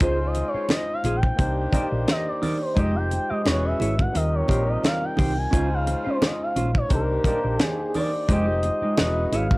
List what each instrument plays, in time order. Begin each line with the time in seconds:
0.00 fingered electric bass C#2, horn section C#3 C4 F4, tine electric piano G#3 C#4 D#4 F4 C5, clean electric guitar F4 G#4 C5, analog synth lead C5, kick, closed hi-hat
0.27 analog synth lead D#5
0.34 muted clean electric guitar stroke, closed hi-hat, muted conga
0.48 analog synth lead C#5
0.54 clean electric guitar F4 G#4 C5, muted fingered electric bass stroke
0.69 analog synth lead D#5, muted clean electric guitar stroke, snare, closed hi-hat, high conga
0.94 analog synth lead F5
1.04 fingered electric bass A#1, clean electric guitar F4 G#4 C5, closed hi-hat, muted conga, low conga
1.16 analog synth lead G5
1.23 muted clean electric guitar stroke, kick
1.36 fingered electric bass C2, horn section D#3 D4 G4, tine electric piano A#3 D4 D#4 G4, muted clean electric guitar stroke, kick, closed hi-hat, muted conga
1.40 tine electric piano C5
1.71 tine electric piano A#3 D#4 G4 C5 D5, clean electric guitar D#4 A#4 D5, kick, closed hi-hat, muted conga, low conga
1.92 fingered electric bass A#1, muted clean electric guitar stroke
2.07 analog synth lead D#5, muted clean electric guitar stroke, snare, closed hi-hat, high conga
2.26 analog synth lead D5, muted clean electric guitar stroke
2.42 clean electric guitar D#4 A#4 D5, open hi-hat, high conga
2.60 analog synth lead C5, muted clean electric guitar stroke
2.74 fingered electric bass F1, horn section D#3 C4 G4, tine electric piano G#3 D#4 F4 G4, clean electric guitar G#3 D#4 G4, kick, closed hi-hat
2.78 tine electric piano C5, analog synth lead D#5
2.94 analog synth lead G5, muted clean electric guitar stroke
3.11 muted clean electric guitar stroke, closed hi-hat, muted conga
3.29 clean electric guitar G#3 D#4 G4, analog synth lead D#5, muted fingered electric bass stroke
3.44 fingered electric bass E1, horn section E3 C#4 G#4, tine electric piano G#3 C#4 E4 F#4 B4, analog synth lead C#5, snare, closed hi-hat, high conga
3.65 analog synth lead E5
3.80 fingered electric bass G#1, clean electric guitar E4 G#4 C#5, closed hi-hat, muted conga
3.98 analog synth lead F#5, muted clean electric guitar stroke, kick, low conga
4.12 fingered electric bass D#2, horn section C3 D#3 G4, tine electric piano G3 C4 D#4 F4 A#4, analog synth lead D#5, muted clean electric guitar stroke, closed hi-hat, muted conga
4.35 analog synth lead C#5
4.47 fingered electric bass A#1, tine electric piano G3 C4 D#4 F4 A#4, clean electric guitar D#4 G4 C5, kick, closed hi-hat, muted conga
4.67 analog synth lead D#5, muted clean electric guitar stroke
4.82 analog synth lead F5, muted clean electric guitar stroke, snare, closed hi-hat, high conga
5.01 analog synth lead G5, muted clean electric guitar stroke
5.17 fingered electric bass C2, clean electric guitar D#4 G4 C5, kick, open hi-hat, high conga
5.36 analog synth lead G#5, muted clean electric guitar stroke
5.51 fingered electric bass C#2, horn section C#3 C4 F4, tine electric piano G#3 C#4 D#4 F4 C5, clean electric guitar C#4 F4 C5, kick, closed hi-hat
5.70 analog synth lead F5, muted clean electric guitar stroke
5.86 muted clean electric guitar stroke, closed hi-hat, muted conga
6.04 clean electric guitar C#4 F4 C5, muted fingered electric bass stroke
6.10 analog synth lead C5
6.21 muted clean electric guitar stroke, snare, closed hi-hat, high conga
6.26 analog synth lead D#5
6.43 analog synth lead F5
6.56 fingered electric bass A#1, clean electric guitar C#4 F4 C5, closed hi-hat, muted conga, low conga
6.75 analog synth lead C#5, kick
6.88 fingered electric bass C2, horn section D#3 D4 G4, tine electric piano A#3 D4 D#4 G4 C5, muted clean electric guitar stroke, kick, closed hi-hat, muted conga
6.94 analog synth lead A#4
7.24 tine electric piano A#3 D4 D#4 G4 C5, clean electric guitar D#4 A#4 D5, kick, closed hi-hat, muted conga, low conga
7.44 fingered electric bass A#1, muted clean electric guitar stroke
7.59 analog synth lead G#4, muted clean electric guitar stroke, snare, closed hi-hat, high conga
7.79 muted clean electric guitar stroke
7.94 clean electric guitar D#4 A#4 D5, analog synth lead D5, open hi-hat, high conga
8.14 muted clean electric guitar stroke
8.28 fingered electric bass F1, horn section D#3 C4 G4, tine electric piano G#3 D#4 F4 G4 C5, clean electric guitar G#3 D#4 G4, kick, closed hi-hat
8.32 analog synth lead D#5
8.48 muted clean electric guitar stroke
8.63 muted clean electric guitar stroke, closed hi-hat, muted conga
8.81 clean electric guitar G#3 D#4 G4, muted fingered electric bass stroke
8.96 fingered electric bass E1, horn section F#3 D#4 F#4, tine electric piano G#3 C#4 E4 F#4 B4, snare, closed hi-hat, high conga
9.32 fingered electric bass G#1, clean electric guitar E4 G#4 C#5, analog synth lead F5, closed hi-hat, muted conga
9.51 muted clean electric guitar stroke, kick, low conga